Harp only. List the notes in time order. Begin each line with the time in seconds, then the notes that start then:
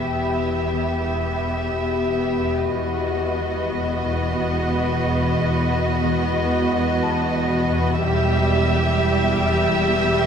Already playing: E3
0.04 E2
0.38 E3
0.72 E3
1.06 E2
1.38 E2
1.71 E2
2.38 E2
2.72 E2
3.06 E3
3.38 E3
3.72 E2
4.04 E2
4.38 E2
4.71 E3
5.04 E2
5.38 E2
5.71 E3
6.04 E3
6.36 E2
6.69 E2
7.03 E2
7.36 E3
7.69 E2
8.03 E2
8.35 E3
8.69 E3
9.02 E2
9.35 E2
9.68 E2
10.02 E3